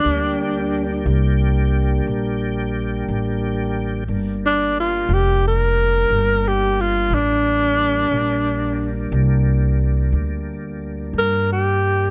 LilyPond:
<<
  \new Staff \with { instrumentName = "Tenor saxophone" } { \time 12/8 \key g \minor \tempo 4. = 60 d'4. r1 r8 | r8 d'8 f'8 g'8 bes'4. g'8 f'8 d'4.~ | d'4. r2. bes'8 g'4 | }
  \new Staff \with { instrumentName = "Tonewheel organ" } { \time 12/8 \key g \minor <g bes d' g'>1. | <g bes d'>1. | <g bes d'>1. | }
  \new Staff \with { instrumentName = "Upright bass" } { \clef bass \time 12/8 \key g \minor d,4. c,4. bes,,4. a,,4. | g,,4. f,,4. g,,4. a,,4. | bes,,4. c,4. d,4. g,4. | }
>>